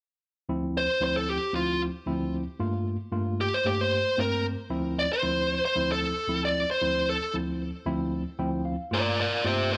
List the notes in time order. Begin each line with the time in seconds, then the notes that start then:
0.49 D2 F3 C4 E4
0.77 C5
1.01 D2 F3 C4 E4 C5
1.17 A4
1.29 G4
1.53 D2 F3 C4 E4 F4
2.07 D2 F3 C4 E4
2.60 G2 A3 A#3 F4
3.12 G2 A3 A#3 F4
3.41 G4
3.54 C5
3.65 G2 A3 A#3 G4
3.81 C5
4.17 G2 A3 A#3 C4 A#4
4.70 D2 F3 C4 E4
4.99 D5
5.13 C5
5.23 D2 F3 C4 E4
5.65 C5
5.76 D2 F3 C4 E4
5.92 A4
6.28 D2 F3 C4 E4
6.45 D5
6.71 C5
6.81 D2 F3 C4 E4
7.09 A4
7.34 D2 F3 C4 E4
7.86 D2 F3 C4 E4
8.39 D2 F3 C4 E4 G5
8.65 F5
8.91 G2 A3 A#3 F4 A#4 D5
9.20 A#4 D5
9.44 G2 A3 A#3 F4 G4 C5
9.73 G4 C5